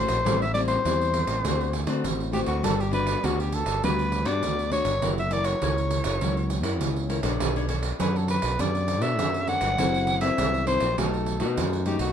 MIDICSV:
0, 0, Header, 1, 5, 480
1, 0, Start_track
1, 0, Tempo, 595829
1, 207, Time_signature, 4, 2, 24, 8
1, 9768, End_track
2, 0, Start_track
2, 0, Title_t, "Soprano saxophone"
2, 0, Program_c, 0, 64
2, 0, Note_on_c, 0, 72, 93
2, 323, Note_off_c, 0, 72, 0
2, 340, Note_on_c, 0, 76, 84
2, 430, Note_off_c, 0, 76, 0
2, 435, Note_on_c, 0, 74, 90
2, 492, Note_off_c, 0, 74, 0
2, 548, Note_on_c, 0, 72, 88
2, 1486, Note_off_c, 0, 72, 0
2, 1883, Note_on_c, 0, 67, 72
2, 1938, Note_off_c, 0, 67, 0
2, 1993, Note_on_c, 0, 66, 73
2, 2112, Note_off_c, 0, 66, 0
2, 2133, Note_on_c, 0, 69, 84
2, 2261, Note_on_c, 0, 67, 72
2, 2273, Note_off_c, 0, 69, 0
2, 2363, Note_off_c, 0, 67, 0
2, 2368, Note_on_c, 0, 71, 81
2, 2619, Note_on_c, 0, 66, 74
2, 2631, Note_off_c, 0, 71, 0
2, 2734, Note_off_c, 0, 66, 0
2, 2746, Note_on_c, 0, 67, 68
2, 2853, Note_on_c, 0, 69, 83
2, 2866, Note_off_c, 0, 67, 0
2, 3091, Note_off_c, 0, 69, 0
2, 3102, Note_on_c, 0, 71, 80
2, 3433, Note_on_c, 0, 74, 77
2, 3446, Note_off_c, 0, 71, 0
2, 3801, Note_off_c, 0, 74, 0
2, 3806, Note_on_c, 0, 73, 90
2, 4142, Note_off_c, 0, 73, 0
2, 4183, Note_on_c, 0, 76, 82
2, 4291, Note_on_c, 0, 74, 93
2, 4304, Note_off_c, 0, 76, 0
2, 4396, Note_on_c, 0, 73, 79
2, 4408, Note_off_c, 0, 74, 0
2, 5362, Note_off_c, 0, 73, 0
2, 6453, Note_on_c, 0, 71, 69
2, 6584, Note_on_c, 0, 69, 62
2, 6596, Note_off_c, 0, 71, 0
2, 6683, Note_off_c, 0, 69, 0
2, 6688, Note_on_c, 0, 71, 80
2, 6934, Note_on_c, 0, 74, 85
2, 6946, Note_off_c, 0, 71, 0
2, 7266, Note_on_c, 0, 76, 87
2, 7278, Note_off_c, 0, 74, 0
2, 7637, Note_off_c, 0, 76, 0
2, 7644, Note_on_c, 0, 78, 98
2, 8213, Note_off_c, 0, 78, 0
2, 8227, Note_on_c, 0, 76, 93
2, 8571, Note_off_c, 0, 76, 0
2, 8598, Note_on_c, 0, 72, 91
2, 8825, Note_off_c, 0, 72, 0
2, 8850, Note_on_c, 0, 69, 65
2, 9296, Note_off_c, 0, 69, 0
2, 9562, Note_on_c, 0, 67, 66
2, 9668, Note_off_c, 0, 67, 0
2, 9673, Note_on_c, 0, 66, 75
2, 9768, Note_off_c, 0, 66, 0
2, 9768, End_track
3, 0, Start_track
3, 0, Title_t, "Nylon-string guitar"
3, 0, Program_c, 1, 24
3, 0, Note_on_c, 1, 45, 49
3, 0, Note_on_c, 1, 57, 49
3, 0, Note_on_c, 1, 61, 55
3, 0, Note_on_c, 1, 66, 54
3, 114, Note_off_c, 1, 57, 0
3, 116, Note_off_c, 1, 61, 0
3, 117, Note_off_c, 1, 66, 0
3, 182, Note_off_c, 1, 45, 0
3, 197, Note_on_c, 1, 45, 53
3, 198, Note_on_c, 1, 55, 53
3, 202, Note_on_c, 1, 60, 50
3, 208, Note_on_c, 1, 64, 53
3, 345, Note_off_c, 1, 55, 0
3, 345, Note_off_c, 1, 60, 0
3, 346, Note_off_c, 1, 64, 0
3, 435, Note_on_c, 1, 55, 51
3, 440, Note_on_c, 1, 60, 53
3, 441, Note_on_c, 1, 64, 58
3, 644, Note_off_c, 1, 55, 0
3, 645, Note_off_c, 1, 60, 0
3, 646, Note_off_c, 1, 64, 0
3, 658, Note_off_c, 1, 45, 0
3, 683, Note_on_c, 1, 52, 48
3, 685, Note_on_c, 1, 55, 52
3, 688, Note_on_c, 1, 60, 49
3, 693, Note_on_c, 1, 64, 54
3, 1128, Note_off_c, 1, 55, 0
3, 1130, Note_off_c, 1, 60, 0
3, 1131, Note_off_c, 1, 64, 0
3, 1142, Note_off_c, 1, 52, 0
3, 1164, Note_on_c, 1, 50, 47
3, 1166, Note_on_c, 1, 57, 48
3, 1168, Note_on_c, 1, 60, 54
3, 1173, Note_on_c, 1, 66, 51
3, 1391, Note_off_c, 1, 57, 0
3, 1393, Note_off_c, 1, 60, 0
3, 1395, Note_off_c, 1, 66, 0
3, 1507, Note_on_c, 1, 57, 51
3, 1509, Note_on_c, 1, 60, 54
3, 1513, Note_on_c, 1, 66, 60
3, 1622, Note_off_c, 1, 50, 0
3, 1640, Note_on_c, 1, 45, 48
3, 1839, Note_off_c, 1, 60, 0
3, 1840, Note_off_c, 1, 57, 0
3, 1842, Note_off_c, 1, 66, 0
3, 1871, Note_on_c, 1, 57, 49
3, 1876, Note_on_c, 1, 60, 44
3, 1878, Note_on_c, 1, 66, 60
3, 2100, Note_off_c, 1, 45, 0
3, 2101, Note_off_c, 1, 57, 0
3, 2101, Note_off_c, 1, 60, 0
3, 2104, Note_off_c, 1, 66, 0
3, 2116, Note_on_c, 1, 55, 54
3, 2120, Note_on_c, 1, 59, 49
3, 2121, Note_on_c, 1, 62, 53
3, 2125, Note_on_c, 1, 66, 66
3, 2265, Note_off_c, 1, 59, 0
3, 2266, Note_off_c, 1, 62, 0
3, 2267, Note_off_c, 1, 66, 0
3, 2345, Note_on_c, 1, 59, 55
3, 2350, Note_on_c, 1, 62, 60
3, 2352, Note_on_c, 1, 66, 64
3, 2559, Note_off_c, 1, 59, 0
3, 2560, Note_off_c, 1, 62, 0
3, 2562, Note_off_c, 1, 66, 0
3, 2578, Note_off_c, 1, 55, 0
3, 2603, Note_on_c, 1, 59, 52
3, 2605, Note_on_c, 1, 50, 47
3, 2605, Note_on_c, 1, 62, 47
3, 2611, Note_on_c, 1, 66, 52
3, 2915, Note_off_c, 1, 59, 0
3, 2916, Note_off_c, 1, 62, 0
3, 2918, Note_off_c, 1, 66, 0
3, 3063, Note_off_c, 1, 50, 0
3, 3087, Note_on_c, 1, 55, 48
3, 3091, Note_on_c, 1, 59, 52
3, 3092, Note_on_c, 1, 62, 48
3, 3096, Note_on_c, 1, 66, 53
3, 3314, Note_off_c, 1, 59, 0
3, 3316, Note_off_c, 1, 62, 0
3, 3316, Note_off_c, 1, 66, 0
3, 3426, Note_on_c, 1, 59, 59
3, 3430, Note_on_c, 1, 62, 53
3, 3432, Note_on_c, 1, 66, 59
3, 3544, Note_off_c, 1, 55, 0
3, 3568, Note_on_c, 1, 50, 49
3, 3759, Note_off_c, 1, 59, 0
3, 3761, Note_off_c, 1, 62, 0
3, 3761, Note_off_c, 1, 66, 0
3, 3794, Note_on_c, 1, 59, 47
3, 3798, Note_on_c, 1, 62, 53
3, 3800, Note_on_c, 1, 66, 63
3, 3956, Note_off_c, 1, 59, 0
3, 3957, Note_off_c, 1, 62, 0
3, 3959, Note_off_c, 1, 66, 0
3, 4024, Note_off_c, 1, 50, 0
3, 4043, Note_on_c, 1, 54, 52
3, 4048, Note_on_c, 1, 70, 51
3, 4051, Note_on_c, 1, 64, 48
3, 4055, Note_on_c, 1, 73, 59
3, 4189, Note_off_c, 1, 64, 0
3, 4189, Note_off_c, 1, 70, 0
3, 4192, Note_off_c, 1, 73, 0
3, 4278, Note_on_c, 1, 64, 56
3, 4280, Note_on_c, 1, 70, 49
3, 4284, Note_on_c, 1, 73, 54
3, 4485, Note_off_c, 1, 64, 0
3, 4485, Note_off_c, 1, 70, 0
3, 4488, Note_off_c, 1, 73, 0
3, 4502, Note_off_c, 1, 54, 0
3, 4528, Note_on_c, 1, 64, 45
3, 4532, Note_on_c, 1, 49, 47
3, 4536, Note_on_c, 1, 70, 49
3, 4539, Note_on_c, 1, 73, 56
3, 4970, Note_off_c, 1, 64, 0
3, 4974, Note_off_c, 1, 70, 0
3, 4975, Note_off_c, 1, 73, 0
3, 4986, Note_off_c, 1, 49, 0
3, 5009, Note_on_c, 1, 54, 48
3, 5012, Note_on_c, 1, 64, 46
3, 5015, Note_on_c, 1, 70, 46
3, 5018, Note_on_c, 1, 73, 46
3, 5234, Note_off_c, 1, 64, 0
3, 5236, Note_off_c, 1, 70, 0
3, 5238, Note_off_c, 1, 73, 0
3, 5343, Note_on_c, 1, 64, 62
3, 5350, Note_on_c, 1, 70, 54
3, 5350, Note_on_c, 1, 73, 60
3, 5465, Note_off_c, 1, 54, 0
3, 5486, Note_on_c, 1, 49, 47
3, 5678, Note_off_c, 1, 64, 0
3, 5679, Note_off_c, 1, 70, 0
3, 5681, Note_off_c, 1, 73, 0
3, 5713, Note_on_c, 1, 64, 46
3, 5717, Note_on_c, 1, 70, 49
3, 5721, Note_on_c, 1, 73, 57
3, 5792, Note_off_c, 1, 64, 0
3, 5794, Note_off_c, 1, 70, 0
3, 5796, Note_off_c, 1, 73, 0
3, 5825, Note_on_c, 1, 62, 52
3, 5828, Note_on_c, 1, 69, 56
3, 5832, Note_on_c, 1, 73, 53
3, 5943, Note_off_c, 1, 49, 0
3, 5966, Note_on_c, 1, 59, 54
3, 6080, Note_off_c, 1, 62, 0
3, 6084, Note_off_c, 1, 69, 0
3, 6087, Note_off_c, 1, 73, 0
3, 6090, Note_on_c, 1, 62, 58
3, 6094, Note_on_c, 1, 69, 53
3, 6096, Note_on_c, 1, 73, 60
3, 6170, Note_off_c, 1, 62, 0
3, 6172, Note_off_c, 1, 69, 0
3, 6174, Note_off_c, 1, 73, 0
3, 6194, Note_on_c, 1, 62, 55
3, 6198, Note_on_c, 1, 69, 52
3, 6199, Note_on_c, 1, 73, 61
3, 6402, Note_off_c, 1, 62, 0
3, 6403, Note_off_c, 1, 69, 0
3, 6405, Note_off_c, 1, 73, 0
3, 6423, Note_off_c, 1, 59, 0
3, 6437, Note_on_c, 1, 54, 50
3, 6441, Note_on_c, 1, 62, 51
3, 6443, Note_on_c, 1, 69, 46
3, 6447, Note_on_c, 1, 73, 48
3, 6753, Note_off_c, 1, 62, 0
3, 6754, Note_off_c, 1, 69, 0
3, 6756, Note_off_c, 1, 73, 0
3, 6899, Note_off_c, 1, 54, 0
3, 6916, Note_on_c, 1, 59, 44
3, 6921, Note_on_c, 1, 62, 50
3, 6927, Note_on_c, 1, 69, 47
3, 7245, Note_off_c, 1, 62, 0
3, 7246, Note_off_c, 1, 69, 0
3, 7261, Note_on_c, 1, 62, 59
3, 7267, Note_on_c, 1, 69, 61
3, 7269, Note_on_c, 1, 73, 61
3, 7379, Note_off_c, 1, 59, 0
3, 7403, Note_on_c, 1, 54, 49
3, 7596, Note_off_c, 1, 62, 0
3, 7598, Note_off_c, 1, 69, 0
3, 7600, Note_off_c, 1, 73, 0
3, 7634, Note_on_c, 1, 62, 51
3, 7639, Note_on_c, 1, 69, 49
3, 7641, Note_on_c, 1, 73, 56
3, 7861, Note_off_c, 1, 54, 0
3, 7862, Note_off_c, 1, 62, 0
3, 7864, Note_off_c, 1, 69, 0
3, 7865, Note_off_c, 1, 73, 0
3, 7884, Note_on_c, 1, 54, 52
3, 7885, Note_on_c, 1, 60, 55
3, 7887, Note_on_c, 1, 64, 58
3, 7892, Note_on_c, 1, 69, 57
3, 8207, Note_off_c, 1, 60, 0
3, 8209, Note_off_c, 1, 64, 0
3, 8211, Note_off_c, 1, 69, 0
3, 8226, Note_on_c, 1, 60, 58
3, 8231, Note_on_c, 1, 64, 63
3, 8235, Note_on_c, 1, 69, 71
3, 8342, Note_off_c, 1, 54, 0
3, 8362, Note_on_c, 1, 54, 50
3, 8559, Note_off_c, 1, 60, 0
3, 8560, Note_off_c, 1, 64, 0
3, 8563, Note_off_c, 1, 69, 0
3, 8589, Note_on_c, 1, 60, 58
3, 8594, Note_on_c, 1, 64, 53
3, 8597, Note_on_c, 1, 69, 55
3, 8740, Note_off_c, 1, 60, 0
3, 8741, Note_off_c, 1, 64, 0
3, 8743, Note_off_c, 1, 69, 0
3, 8820, Note_off_c, 1, 54, 0
3, 8839, Note_on_c, 1, 47, 43
3, 8842, Note_on_c, 1, 57, 51
3, 8848, Note_on_c, 1, 66, 51
3, 8849, Note_on_c, 1, 63, 48
3, 9166, Note_off_c, 1, 57, 0
3, 9167, Note_off_c, 1, 63, 0
3, 9169, Note_off_c, 1, 66, 0
3, 9185, Note_on_c, 1, 57, 51
3, 9189, Note_on_c, 1, 63, 51
3, 9194, Note_on_c, 1, 66, 67
3, 9300, Note_off_c, 1, 47, 0
3, 9327, Note_on_c, 1, 42, 49
3, 9518, Note_off_c, 1, 57, 0
3, 9519, Note_off_c, 1, 63, 0
3, 9522, Note_off_c, 1, 66, 0
3, 9552, Note_on_c, 1, 57, 48
3, 9556, Note_on_c, 1, 63, 50
3, 9557, Note_on_c, 1, 66, 62
3, 9762, Note_off_c, 1, 57, 0
3, 9763, Note_off_c, 1, 63, 0
3, 9764, Note_off_c, 1, 66, 0
3, 9768, Note_off_c, 1, 42, 0
3, 9768, End_track
4, 0, Start_track
4, 0, Title_t, "Picked electric bass"
4, 0, Program_c, 2, 34
4, 70, Note_on_c, 2, 34, 88
4, 179, Note_off_c, 2, 34, 0
4, 210, Note_on_c, 2, 33, 77
4, 617, Note_off_c, 2, 33, 0
4, 687, Note_on_c, 2, 40, 69
4, 994, Note_off_c, 2, 40, 0
4, 1027, Note_on_c, 2, 33, 74
4, 1138, Note_off_c, 2, 33, 0
4, 1169, Note_on_c, 2, 38, 81
4, 1508, Note_off_c, 2, 38, 0
4, 1508, Note_on_c, 2, 50, 85
4, 1649, Note_on_c, 2, 33, 81
4, 1661, Note_off_c, 2, 50, 0
4, 1955, Note_off_c, 2, 33, 0
4, 1992, Note_on_c, 2, 38, 83
4, 2101, Note_off_c, 2, 38, 0
4, 2132, Note_on_c, 2, 31, 81
4, 2539, Note_off_c, 2, 31, 0
4, 2612, Note_on_c, 2, 38, 86
4, 2916, Note_off_c, 2, 38, 0
4, 2952, Note_on_c, 2, 31, 66
4, 3061, Note_off_c, 2, 31, 0
4, 3091, Note_on_c, 2, 38, 76
4, 3430, Note_off_c, 2, 38, 0
4, 3430, Note_on_c, 2, 43, 82
4, 3569, Note_off_c, 2, 43, 0
4, 3569, Note_on_c, 2, 38, 74
4, 3875, Note_off_c, 2, 38, 0
4, 3908, Note_on_c, 2, 31, 83
4, 4018, Note_off_c, 2, 31, 0
4, 4052, Note_on_c, 2, 30, 93
4, 4458, Note_off_c, 2, 30, 0
4, 4533, Note_on_c, 2, 37, 74
4, 4837, Note_off_c, 2, 37, 0
4, 4874, Note_on_c, 2, 30, 80
4, 4982, Note_off_c, 2, 30, 0
4, 5013, Note_on_c, 2, 37, 87
4, 5352, Note_off_c, 2, 37, 0
4, 5352, Note_on_c, 2, 42, 84
4, 5490, Note_off_c, 2, 42, 0
4, 5490, Note_on_c, 2, 37, 84
4, 5795, Note_off_c, 2, 37, 0
4, 5830, Note_on_c, 2, 34, 80
4, 5940, Note_off_c, 2, 34, 0
4, 5968, Note_on_c, 2, 35, 80
4, 6376, Note_off_c, 2, 35, 0
4, 6450, Note_on_c, 2, 42, 74
4, 6755, Note_off_c, 2, 42, 0
4, 6792, Note_on_c, 2, 35, 72
4, 6901, Note_off_c, 2, 35, 0
4, 6929, Note_on_c, 2, 42, 80
4, 7269, Note_off_c, 2, 42, 0
4, 7269, Note_on_c, 2, 47, 83
4, 7409, Note_off_c, 2, 47, 0
4, 7409, Note_on_c, 2, 42, 83
4, 7714, Note_off_c, 2, 42, 0
4, 7747, Note_on_c, 2, 31, 80
4, 7857, Note_off_c, 2, 31, 0
4, 7888, Note_on_c, 2, 30, 84
4, 8296, Note_off_c, 2, 30, 0
4, 8368, Note_on_c, 2, 36, 76
4, 8673, Note_off_c, 2, 36, 0
4, 8708, Note_on_c, 2, 34, 74
4, 8818, Note_off_c, 2, 34, 0
4, 8847, Note_on_c, 2, 35, 78
4, 9187, Note_on_c, 2, 47, 84
4, 9199, Note_off_c, 2, 35, 0
4, 9327, Note_on_c, 2, 42, 81
4, 9340, Note_off_c, 2, 47, 0
4, 9633, Note_off_c, 2, 42, 0
4, 9664, Note_on_c, 2, 35, 88
4, 9768, Note_off_c, 2, 35, 0
4, 9768, End_track
5, 0, Start_track
5, 0, Title_t, "Pandeiro"
5, 68, Note_on_c, 9, 54, 60
5, 149, Note_off_c, 9, 54, 0
5, 211, Note_on_c, 9, 54, 83
5, 292, Note_off_c, 9, 54, 0
5, 337, Note_on_c, 9, 54, 32
5, 418, Note_off_c, 9, 54, 0
5, 440, Note_on_c, 9, 54, 49
5, 521, Note_off_c, 9, 54, 0
5, 546, Note_on_c, 9, 54, 60
5, 627, Note_off_c, 9, 54, 0
5, 687, Note_on_c, 9, 54, 69
5, 768, Note_off_c, 9, 54, 0
5, 817, Note_on_c, 9, 54, 33
5, 897, Note_off_c, 9, 54, 0
5, 915, Note_on_c, 9, 54, 61
5, 996, Note_off_c, 9, 54, 0
5, 1026, Note_on_c, 9, 54, 63
5, 1107, Note_off_c, 9, 54, 0
5, 1165, Note_on_c, 9, 54, 77
5, 1245, Note_off_c, 9, 54, 0
5, 1295, Note_on_c, 9, 54, 27
5, 1375, Note_off_c, 9, 54, 0
5, 1396, Note_on_c, 9, 54, 52
5, 1476, Note_off_c, 9, 54, 0
5, 1505, Note_on_c, 9, 54, 55
5, 1586, Note_off_c, 9, 54, 0
5, 1647, Note_on_c, 9, 54, 66
5, 1727, Note_off_c, 9, 54, 0
5, 1775, Note_on_c, 9, 54, 31
5, 1856, Note_off_c, 9, 54, 0
5, 1879, Note_on_c, 9, 54, 51
5, 1959, Note_off_c, 9, 54, 0
5, 1985, Note_on_c, 9, 54, 56
5, 2066, Note_off_c, 9, 54, 0
5, 2127, Note_on_c, 9, 54, 80
5, 2207, Note_off_c, 9, 54, 0
5, 2258, Note_on_c, 9, 54, 34
5, 2339, Note_off_c, 9, 54, 0
5, 2359, Note_on_c, 9, 54, 55
5, 2440, Note_off_c, 9, 54, 0
5, 2470, Note_on_c, 9, 54, 64
5, 2551, Note_off_c, 9, 54, 0
5, 2609, Note_on_c, 9, 54, 72
5, 2689, Note_off_c, 9, 54, 0
5, 2737, Note_on_c, 9, 54, 34
5, 2818, Note_off_c, 9, 54, 0
5, 2839, Note_on_c, 9, 54, 54
5, 2920, Note_off_c, 9, 54, 0
5, 2948, Note_on_c, 9, 54, 66
5, 3029, Note_off_c, 9, 54, 0
5, 3090, Note_on_c, 9, 54, 76
5, 3171, Note_off_c, 9, 54, 0
5, 3215, Note_on_c, 9, 54, 28
5, 3296, Note_off_c, 9, 54, 0
5, 3319, Note_on_c, 9, 54, 52
5, 3399, Note_off_c, 9, 54, 0
5, 3427, Note_on_c, 9, 54, 51
5, 3507, Note_off_c, 9, 54, 0
5, 3566, Note_on_c, 9, 54, 65
5, 3646, Note_off_c, 9, 54, 0
5, 3698, Note_on_c, 9, 54, 28
5, 3778, Note_off_c, 9, 54, 0
5, 3798, Note_on_c, 9, 54, 53
5, 3879, Note_off_c, 9, 54, 0
5, 3906, Note_on_c, 9, 54, 59
5, 3987, Note_off_c, 9, 54, 0
5, 4045, Note_on_c, 9, 54, 74
5, 4126, Note_off_c, 9, 54, 0
5, 4172, Note_on_c, 9, 54, 31
5, 4253, Note_off_c, 9, 54, 0
5, 4275, Note_on_c, 9, 54, 49
5, 4356, Note_off_c, 9, 54, 0
5, 4385, Note_on_c, 9, 54, 61
5, 4466, Note_off_c, 9, 54, 0
5, 4525, Note_on_c, 9, 54, 70
5, 4605, Note_off_c, 9, 54, 0
5, 4655, Note_on_c, 9, 54, 32
5, 4736, Note_off_c, 9, 54, 0
5, 4757, Note_on_c, 9, 54, 57
5, 4838, Note_off_c, 9, 54, 0
5, 4866, Note_on_c, 9, 54, 68
5, 4946, Note_off_c, 9, 54, 0
5, 5004, Note_on_c, 9, 54, 68
5, 5085, Note_off_c, 9, 54, 0
5, 5133, Note_on_c, 9, 54, 26
5, 5213, Note_off_c, 9, 54, 0
5, 5236, Note_on_c, 9, 54, 54
5, 5316, Note_off_c, 9, 54, 0
5, 5345, Note_on_c, 9, 54, 60
5, 5425, Note_off_c, 9, 54, 0
5, 5483, Note_on_c, 9, 54, 66
5, 5564, Note_off_c, 9, 54, 0
5, 5609, Note_on_c, 9, 54, 32
5, 5690, Note_off_c, 9, 54, 0
5, 5717, Note_on_c, 9, 54, 52
5, 5798, Note_off_c, 9, 54, 0
5, 5825, Note_on_c, 9, 54, 66
5, 5905, Note_off_c, 9, 54, 0
5, 5964, Note_on_c, 9, 54, 80
5, 6044, Note_off_c, 9, 54, 0
5, 6090, Note_on_c, 9, 54, 30
5, 6171, Note_off_c, 9, 54, 0
5, 6192, Note_on_c, 9, 54, 57
5, 6272, Note_off_c, 9, 54, 0
5, 6305, Note_on_c, 9, 54, 58
5, 6385, Note_off_c, 9, 54, 0
5, 6443, Note_on_c, 9, 54, 74
5, 6523, Note_off_c, 9, 54, 0
5, 6573, Note_on_c, 9, 54, 31
5, 6653, Note_off_c, 9, 54, 0
5, 6671, Note_on_c, 9, 54, 61
5, 6752, Note_off_c, 9, 54, 0
5, 6784, Note_on_c, 9, 54, 62
5, 6864, Note_off_c, 9, 54, 0
5, 6921, Note_on_c, 9, 54, 71
5, 7002, Note_off_c, 9, 54, 0
5, 7048, Note_on_c, 9, 54, 30
5, 7129, Note_off_c, 9, 54, 0
5, 7153, Note_on_c, 9, 54, 54
5, 7233, Note_off_c, 9, 54, 0
5, 7264, Note_on_c, 9, 54, 58
5, 7344, Note_off_c, 9, 54, 0
5, 7401, Note_on_c, 9, 54, 76
5, 7482, Note_off_c, 9, 54, 0
5, 7527, Note_on_c, 9, 54, 31
5, 7608, Note_off_c, 9, 54, 0
5, 7633, Note_on_c, 9, 54, 49
5, 7714, Note_off_c, 9, 54, 0
5, 7741, Note_on_c, 9, 54, 66
5, 7821, Note_off_c, 9, 54, 0
5, 7881, Note_on_c, 9, 54, 76
5, 7961, Note_off_c, 9, 54, 0
5, 8011, Note_on_c, 9, 54, 34
5, 8091, Note_off_c, 9, 54, 0
5, 8112, Note_on_c, 9, 54, 55
5, 8193, Note_off_c, 9, 54, 0
5, 8224, Note_on_c, 9, 54, 62
5, 8305, Note_off_c, 9, 54, 0
5, 8363, Note_on_c, 9, 54, 82
5, 8444, Note_off_c, 9, 54, 0
5, 8492, Note_on_c, 9, 54, 31
5, 8572, Note_off_c, 9, 54, 0
5, 8594, Note_on_c, 9, 54, 64
5, 8675, Note_off_c, 9, 54, 0
5, 8704, Note_on_c, 9, 54, 62
5, 8784, Note_off_c, 9, 54, 0
5, 8845, Note_on_c, 9, 54, 77
5, 8926, Note_off_c, 9, 54, 0
5, 8971, Note_on_c, 9, 54, 27
5, 9052, Note_off_c, 9, 54, 0
5, 9073, Note_on_c, 9, 54, 49
5, 9154, Note_off_c, 9, 54, 0
5, 9183, Note_on_c, 9, 54, 55
5, 9263, Note_off_c, 9, 54, 0
5, 9324, Note_on_c, 9, 54, 73
5, 9404, Note_off_c, 9, 54, 0
5, 9450, Note_on_c, 9, 54, 31
5, 9530, Note_off_c, 9, 54, 0
5, 9551, Note_on_c, 9, 54, 46
5, 9632, Note_off_c, 9, 54, 0
5, 9661, Note_on_c, 9, 54, 56
5, 9742, Note_off_c, 9, 54, 0
5, 9768, End_track
0, 0, End_of_file